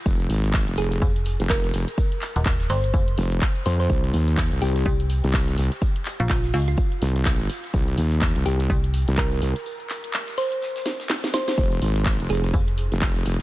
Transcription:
0.06 wobble bass F1, kick, tambourine, cabasa
0.20 closed hi-hat, cabasa
0.29 wobble bass G#1, open hi-hat, tambourine, cabasa
0.44 snare, closed hi-hat, cabasa
0.53 kick, snare, clap, tambourine, cabasa
0.68 wobble bass F1, closed hi-hat, cabasa
0.77 wobble bass F1, synth pluck G#4, open hi-hat, tambourine, cabasa
0.92 snare, closed hi-hat, cabasa
1.02 fm bass F1, kick, tambourine, cabasa
1.16 closed hi-hat, cabasa
1.25 open hi-hat, tambourine, cabasa
1.40 wobble bass F1, snare, closed hi-hat, cabasa
1.50 synth pluck A#4, kick, snare, clap, tambourine, cabasa
1.64 snare, closed hi-hat, cabasa
1.73 wobble bass F1, open hi-hat, tambourine, cabasa
1.87 snare, closed hi-hat, cabasa
1.98 kick, tambourine, cabasa
2.12 closed hi-hat, cabasa
2.21 clap, open hi-hat, tambourine, cabasa
2.36 fm bass D#1, closed hi-hat, cabasa
2.45 fm bass D#1, kick, snare, clap, tambourine, cabasa
2.60 snare, closed hi-hat, cabasa
2.69 fm bass G1, synth pluck C5, snare, open hi-hat, cabasa
2.84 closed hi-hat, cabasa
2.94 fm bass F1, kick, tambourine, cabasa
3.07 closed hi-hat, cabasa
3.17 wobble bass F1, open hi-hat, tambourine, cabasa
3.32 closed hi-hat, cabasa
3.41 kick, snare, clap, open hi-hat, tambourine, cabasa
3.56 closed hi-hat, cabasa
3.65 wobble bass F2, synth pluck C5, open hi-hat, tambourine, cabasa
3.80 synth pluck C5, snare, closed hi-hat, cabasa
3.89 wobble bass C2, kick, tambourine, cabasa
4.04 closed hi-hat, cabasa
4.13 wobble bass D#2, open hi-hat, tambourine, cabasa
4.27 snare, closed hi-hat, cabasa
4.37 kick, snare, clap, tambourine, cabasa
4.52 wobble bass C2, closed hi-hat, cabasa
4.61 wobble bass C2, synth pluck G4, open hi-hat, tambourine, cabasa
4.76 snare, closed hi-hat, cabasa
4.85 fm bass C2, kick, tambourine, cabasa
5.00 closed hi-hat, cabasa
5.10 open hi-hat, tambourine, cabasa
5.24 wobble bass C2, snare, closed hi-hat, cabasa
5.34 kick, snare, clap, tambourine, cabasa
5.48 snare, closed hi-hat, cabasa
5.58 wobble bass C2, open hi-hat, tambourine, cabasa
5.72 snare, closed hi-hat, cabasa
5.82 kick, tambourine, cabasa
5.96 closed hi-hat, cabasa
6.05 clap, open hi-hat, tambourine, cabasa
6.20 fm bass A#1, synth pluck F4, closed hi-hat, cabasa
6.29 fm bass A#1, kick, snare, clap, tambourine, cabasa
6.43 snare, closed hi-hat, cabasa
6.53 fm bass C#2, synth pluck F4, snare, open hi-hat, cabasa
6.68 synth pluck F4, closed hi-hat, cabasa
6.77 kick, tambourine, cabasa
6.91 closed hi-hat, cabasa
7.02 wobble bass C2, open hi-hat, tambourine, cabasa
7.16 closed hi-hat, cabasa
7.25 kick, snare, clap, open hi-hat, tambourine, cabasa
7.40 closed hi-hat, cabasa
7.49 open hi-hat, tambourine, cabasa
7.64 snare, closed hi-hat, cabasa
7.74 wobble bass C2, kick, tambourine, cabasa
7.87 closed hi-hat, cabasa
7.97 wobble bass D#2, open hi-hat, tambourine, cabasa
8.12 snare, closed hi-hat, cabasa
8.21 kick, snare, clap, tambourine, cabasa
8.36 wobble bass C2, closed hi-hat, cabasa
8.45 wobble bass C2, synth pluck G4, open hi-hat, tambourine, cabasa
8.59 snare, closed hi-hat, cabasa
8.70 fm bass C2, kick, tambourine, cabasa
8.84 closed hi-hat, cabasa
8.93 open hi-hat, tambourine, cabasa
9.08 wobble bass C2, snare, closed hi-hat, cabasa
9.17 synth pluck A#4, kick, snare, clap, tambourine, cabasa
9.32 snare, closed hi-hat, cabasa
9.42 wobble bass C2, open hi-hat, tambourine, cabasa
9.56 snare, closed hi-hat, cabasa
9.66 tambourine, cabasa
9.80 closed hi-hat, cabasa
9.90 clap, open hi-hat, tambourine, cabasa
10.03 closed hi-hat, cabasa
10.14 snare, clap, tambourine, cabasa
10.28 snare, closed hi-hat, cabasa
10.38 synth pluck C5, snare, open hi-hat, cabasa
10.51 closed hi-hat, cabasa
10.62 snare, tambourine, cabasa
10.76 snare, closed hi-hat, tambourine, cabasa
10.85 snare, open hi-hat, tambourine, cabasa
10.99 snare, closed hi-hat, tambourine, cabasa
11.09 snare, clap, open hi-hat, tambourine, cabasa
11.23 snare, closed hi-hat, tambourine, cabasa
11.33 synth pluck C5, snare, open hi-hat, tambourine, cabasa
11.48 synth pluck C5, snare, closed hi-hat, tambourine, cabasa
11.57 wobble bass F1, kick, tambourine, cabasa
11.72 closed hi-hat, cabasa
11.82 wobble bass G#1, open hi-hat, tambourine, cabasa
11.96 snare, closed hi-hat, cabasa
12.06 kick, snare, clap, tambourine, cabasa
12.20 wobble bass F1, closed hi-hat, cabasa
12.29 wobble bass F1, synth pluck G#4, open hi-hat, tambourine, cabasa
12.44 snare, closed hi-hat, cabasa
12.53 fm bass F1, kick, tambourine, cabasa
12.67 closed hi-hat, cabasa
12.77 open hi-hat, tambourine, cabasa
12.91 wobble bass F1, snare, closed hi-hat, cabasa
13.02 kick, snare, clap, tambourine, cabasa
13.15 snare, closed hi-hat, cabasa
13.26 wobble bass F1, open hi-hat, tambourine, cabasa

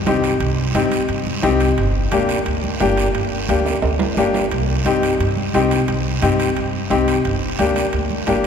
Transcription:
0.06 upright bass C2, upright piano C4 D#4 G4, high conga, high timbale, low timbale, short guiro
0.24 high timbale, short guiro
0.40 upright bass C2, high timbale, long guiro
0.75 upright bass G2, upright piano C4 D#4 G4, high conga, high timbale, short guiro
0.92 high timbale, short guiro
1.09 upright bass G2, high timbale, long guiro
1.26 high conga
1.43 upright bass C2, upright piano C4 D#4 G4, high conga, high timbale, low timbale, short guiro
1.60 high timbale, short guiro
1.78 upright bass G1, high timbale, long guiro
2.12 upright bass D2, upright piano A#3 D4 G4, high conga, high timbale, short guiro
2.29 high timbale, short guiro
2.46 upright bass D2, high timbale, long guiro
2.64 high conga
2.80 upright bass G1, upright piano A#3 D4 G4, high conga, high timbale, low timbale, short guiro
2.97 high timbale, short guiro
3.15 upright bass G1, high timbale, long guiro
3.49 upright bass D2, upright piano A#3 D4 G4, high conga, high timbale, short guiro
3.66 high timbale, short guiro
3.82 upright bass D2, high timbale, long guiro
3.99 high conga, low timbale
4.17 upright bass G1, upright piano A#3 D4 G4, high conga, short guiro
4.34 low timbale, short guiro
4.51 upright bass C2, high timbale, long guiro
4.85 upright bass G2, upright piano C4 D#4 G4, high conga, high timbale, short guiro
5.03 high timbale, short guiro
5.20 upright bass G2, high timbale, long guiro
5.37 high conga
5.54 upright bass C2, upright piano C4 D#4 G4, high conga, high timbale, low timbale, short guiro
5.71 high timbale, short guiro
5.88 upright bass C2, high timbale, long guiro
6.22 upright bass G2, upright piano C4 D#4 G4, high conga, high timbale, short guiro
6.40 high timbale, short guiro
6.57 upright bass G2, high timbale, long guiro
6.90 upright bass C2, upright piano C4 D#4 G4, high conga, high timbale, short guiro
7.08 high timbale, short guiro
7.25 upright bass G1, high timbale, long guiro
7.59 upright bass D2, upright piano A#3 D4 G4, high conga, high timbale, short guiro
7.76 high timbale, short guiro
7.93 upright bass D2, high timbale, long guiro
8.10 high conga
8.27 upright bass G1, upright piano A#3 D4 G4, high conga, high timbale, low timbale, short guiro

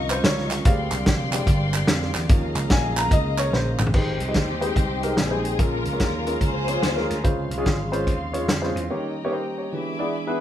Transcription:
Already playing: slap bass C2, tonewheel organ D#3 G3 C#4 F4 A#4, upright piano F3 A#3 D#4 D#5, string section D#5 F5 A#5 C#6
0.10 upright piano C5, clap, closed hi-hat
0.24 slap bass C#2, upright piano C#5, snare, closed hi-hat
0.38 snare
0.50 snare, clap, closed hi-hat
0.65 slap bass D2, tonewheel organ D3 G#3 C4 G4, upright piano G3 G#3 C4 D4 F5, string section D5 F5 G5 C6, kick, closed hi-hat
0.91 slap bass C2, clap, closed hi-hat
1.06 slap bass F1, kick, snare, closed hi-hat
1.32 upright piano G3 G#3 C4 D4, clap, closed hi-hat
1.47 slap bass G1, kick, closed hi-hat
1.74 clap, closed hi-hat
1.87 slap bass F2, snare, closed hi-hat
2.02 snare
2.15 slap bass E2, snare, clap, closed hi-hat
2.29 slap bass D#2, tonewheel organ D#3 A#3 C#4 G#4, upright piano F3 G#3 C#4, string section D#5 A#5, kick, closed hi-hat
2.55 slap bass C#2, clap, closed hi-hat
2.70 slap bass A#1, upright piano G#5, kick, snare, closed hi-hat
2.97 upright piano A#5, clap, closed hi-hat
3.11 slap bass C#2, upright piano D#5, kick, closed hi-hat
3.38 upright piano C#5, clap, closed hi-hat
3.53 slap bass A#1, upright piano C5, snare
3.79 slap bass A1, clap, mid tom
3.87 floor tom
3.94 slap bass G#1, upright piano G#2 G#3 D#4 G4 C5, tonewheel organ D#3 G#3 C4 C5 G5, string section C4 D#4 G4 D#5 G5 C6, kick, crash
4.20 slap bass C2, closed hi-hat
4.28 upright piano G#3 D#4 G4 D#5
4.34 slap bass D#2, kick, snare, closed hi-hat
4.61 upright piano G#3 D#4 G4 C5, closed hi-hat
4.76 slap bass C2, kick, closed hi-hat
5.03 upright piano G#3 D#4 G4 A#4, closed hi-hat
5.17 slap bass A#1, string section C4 D#4 G#4, snare, closed hi-hat
5.31 upright piano G#3 D#4 G4 C5
5.45 closed hi-hat
5.58 slap bass A#1, upright piano A#2 G#3 C#4 F4 A#4, tonewheel organ F3 A#3 C#4 G#4, string section C#4 F4 A#4 F5 A#5, kick, closed hi-hat
5.85 slap bass C#2, closed hi-hat
5.93 upright piano G#3 C#4 F4 A#4
6.00 slap bass D#2, string section C#4 F4 A#4, kick, snare, closed hi-hat
6.26 upright piano G#3 C#4 F4 A#4, closed hi-hat
6.41 slap bass C#2, string section F4 G#4 C5, kick, closed hi-hat
6.68 upright piano G#3 C#4 F4 C#5, closed hi-hat
6.83 slap bass D#2, snare, closed hi-hat
6.96 upright piano G#3 C#4 F4 A#4, snare
7.10 slap bass D2, snare, closed hi-hat
7.23 slap bass C#2, upright piano C#3 G#3 C#4 F4 C5, tonewheel organ G#3 C4 C#4, string section F5 C6, kick, closed hi-hat
7.50 slap bass C2, closed hi-hat
7.58 upright piano G#3 C#4 F4 G#4
7.66 slap bass G#1, kick, snare, closed hi-hat
7.92 upright piano G#3 C#4 F4 C5, closed hi-hat
8.07 slap bass D#2, kick, closed hi-hat
8.33 upright piano G#3 C#4 F4 C#5, closed hi-hat
8.48 slap bass F2, snare, closed hi-hat
8.61 upright piano G#3 C#4 F4 C5, snare
8.76 slap bass E2, closed hi-hat
8.90 tonewheel organ D#3 G3 A#3 G4, upright piano D#3 A#3 D#4 G4 C#5, string section D#5 G5 A#5
9.25 upright piano A#3 D#4 G4 C#5
9.32 upright piano G4 C5
9.58 upright piano G4 C#5
9.72 upright piano E3, tonewheel organ E3 G#3 B3 D4 G#4, string section E5 G#5 B5 D6
9.99 upright piano B3 E4 G#4 D5
10.27 upright piano B3 E4 G#4 B4

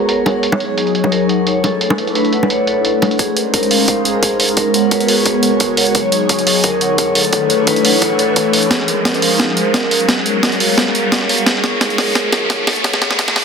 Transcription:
Already playing: analog synth pad G#3 B3 F#4 C#5 A#5, vibraphone G#4 B4 F#5
0.09 vibraphone A#4, closed hi-hat
0.26 vibraphone F#5, closed hi-hat, high bongo
0.43 analog synth pad F#3 D#4 G#4, vibraphone C#5, closed hi-hat
0.52 high bongo
0.60 vibraphone G#4, closed hi-hat
0.78 vibraphone G#4, closed hi-hat
0.87 closed hi-hat
0.95 closed hi-hat
1.04 high bongo
1.12 vibraphone A#4, closed hi-hat
1.29 vibraphone F#5, closed hi-hat
1.47 vibraphone C#5, closed hi-hat
1.64 analog synth pad A3 D4 E4 B4, vibraphone A4, closed hi-hat, high bongo
1.81 vibraphone A4, closed hi-hat
1.90 high bongo
1.98 closed hi-hat
2.07 closed hi-hat
2.15 vibraphone B4, closed hi-hat
2.25 closed hi-hat
2.33 vibraphone F#5, closed hi-hat
2.43 high bongo
2.50 vibraphone C#5, closed hi-hat
2.67 vibraphone A4, closed hi-hat
2.85 vibraphone A4, closed hi-hat
3.02 closed hi-hat, high bongo
3.11 closed hi-hat
3.19 analog synth pad G#3 C#4 D#4 A#4 C5, vibraphone G#4, kick, closed hi-hat, riser
3.37 closed hi-hat
3.53 vibraphone A#4, kick, closed hi-hat
3.63 closed hi-hat
3.71 vibraphone F5, open hi-hat
3.88 vibraphone C5, kick, closed hi-hat
4.05 vibraphone G#4, closed hi-hat
4.22 vibraphone G#4, kick, closed hi-hat
4.40 open hi-hat
4.49 closed hi-hat
4.57 analog synth pad G#3 B3 F#4 C#5, vibraphone A#4, kick, closed hi-hat
4.74 vibraphone F#5, closed hi-hat
4.91 vibraphone B4, kick, closed hi-hat
5.00 closed hi-hat
5.08 vibraphone G#4, open hi-hat
5.26 vibraphone G#4, kick, closed hi-hat
5.43 closed hi-hat
5.60 vibraphone A#4, kick, closed hi-hat
5.77 vibraphone F#5, open hi-hat
5.87 closed hi-hat
5.95 analog synth pad F#3 D#4 G#4, vibraphone C#5, kick, closed hi-hat
6.12 vibraphone G#4, closed hi-hat
6.29 kick, closed hi-hat
6.39 closed hi-hat
6.47 open hi-hat
6.64 vibraphone A#4, kick, closed hi-hat
6.81 vibraphone F#5, closed hi-hat
6.98 vibraphone C#5, kick, closed hi-hat
7.15 analog synth pad A3 D4 E4 B4 C#5, vibraphone A4, open hi-hat
7.25 closed hi-hat
7.33 vibraphone A4, kick, closed hi-hat
7.50 closed hi-hat
7.67 vibraphone B4, kick, closed hi-hat
7.76 closed hi-hat
7.85 vibraphone F#5, open hi-hat
8.02 vibraphone C#5, kick, closed hi-hat
8.19 vibraphone A4, closed hi-hat
8.36 kick, closed hi-hat
8.53 open hi-hat
8.63 closed hi-hat
8.71 analog synth pad G#3 C#4 D#4 A#4 C5, vibraphone G#4, kick, snare, closed hi-hat
8.88 vibraphone A#4, closed hi-hat
9.05 kick, snare, closed hi-hat
9.14 closed hi-hat
9.22 vibraphone F5, open hi-hat
9.40 vibraphone G#4, kick, snare, closed hi-hat
9.57 vibraphone A#4, closed hi-hat
9.74 vibraphone A#4, kick, snare, closed hi-hat
9.91 vibraphone F5, open hi-hat
10.00 closed hi-hat
10.09 analog synth pad B3 F#4 C#5, vibraphone G#4, kick, snare, closed hi-hat
10.26 vibraphone A#4, closed hi-hat
10.43 vibraphone A#4, kick, snare, closed hi-hat
10.52 closed hi-hat
10.60 vibraphone F5, open hi-hat
10.78 vibraphone G#4, kick, snare, closed hi-hat
10.95 vibraphone A#4, closed hi-hat
11.12 kick, snare, closed hi-hat
11.29 vibraphone F5, open hi-hat
11.39 closed hi-hat
11.46 analog synth pad F#3 D#4 F4 G#4, vibraphone G#4, kick, snare, closed hi-hat
11.64 vibraphone A#4, snare, closed hi-hat
11.81 vibraphone G#4, kick, snare, closed hi-hat
11.90 closed hi-hat
11.98 vibraphone A#4, snare, open hi-hat
12.15 vibraphone G#4, kick, snare, closed hi-hat
12.32 vibraphone A#4, snare, closed hi-hat
12.50 vibraphone G#4, kick, snare, closed hi-hat
12.67 analog synth pad A3 D4 E4 B4, vibraphone A4, snare, open hi-hat
12.76 closed hi-hat
12.84 vibraphone G#4, kick, snare, closed hi-hat
12.93 snare
13.02 vibraphone G#4, snare, closed hi-hat
13.11 snare, closed hi-hat
13.19 vibraphone G#4, kick, snare, closed hi-hat
13.28 snare, closed hi-hat
13.36 vibraphone G#4, snare, open hi-hat

